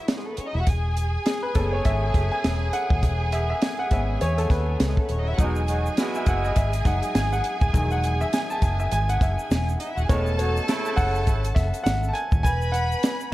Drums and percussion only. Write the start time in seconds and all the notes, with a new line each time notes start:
0.08 snare, closed hi-hat
0.37 closed hi-hat
0.67 kick, closed hi-hat
0.97 closed hi-hat
1.26 snare, closed hi-hat
1.55 kick, closed hi-hat
1.85 kick, closed hi-hat
2.14 kick, closed hi-hat
2.44 snare, closed hi-hat
2.73 closed hi-hat
2.90 kick
3.03 kick, closed hi-hat
3.32 closed hi-hat
3.62 snare, closed hi-hat
3.91 kick, closed hi-hat
4.21 closed hi-hat
4.38 closed hi-hat
4.50 kick, snare, closed hi-hat
4.80 snare, closed hi-hat
4.97 kick
5.09 closed hi-hat
5.38 kick, closed hi-hat, shaker
5.56 shaker
5.68 closed hi-hat, shaker
5.86 shaker
5.97 snare, closed hi-hat, shaker
6.15 shaker
6.26 kick, closed hi-hat, shaker
6.45 shaker
6.56 kick, closed hi-hat, shaker
6.73 closed hi-hat, shaker
6.85 kick, closed hi-hat, shaker
7.03 closed hi-hat, shaker
7.15 snare, closed hi-hat, shaker
7.33 shaker
7.44 closed hi-hat
7.61 kick, shaker
7.74 kick, closed hi-hat, shaker
7.91 shaker
8.04 closed hi-hat, shaker
8.21 shaker
8.33 snare, closed hi-hat, shaker
8.50 shaker
8.62 kick, closed hi-hat, shaker
8.80 shaker
8.92 closed hi-hat, shaker
9.09 closed hi-hat, shaker
9.21 kick, closed hi-hat, shaker
9.39 shaker
9.51 snare, closed hi-hat, shaker
9.69 shaker
9.80 closed hi-hat
9.98 shaker
10.09 kick, closed hi-hat, shaker
10.27 shaker
10.39 closed hi-hat, shaker
10.57 shaker
10.68 snare, closed hi-hat, shaker
10.85 shaker
10.97 kick, open hi-hat, shaker
11.15 shaker
11.27 kick, closed hi-hat, shaker
11.44 closed hi-hat, shaker
11.56 kick, snare, closed hi-hat, shaker
11.74 closed hi-hat, shaker
11.86 snare, closed hi-hat, shaker
12.03 shaker
12.15 closed hi-hat
12.32 kick, shaker
12.44 kick, closed hi-hat, shaker
12.62 shaker
12.74 closed hi-hat, shaker
12.92 shaker
13.03 snare, closed hi-hat, shaker
13.20 shaker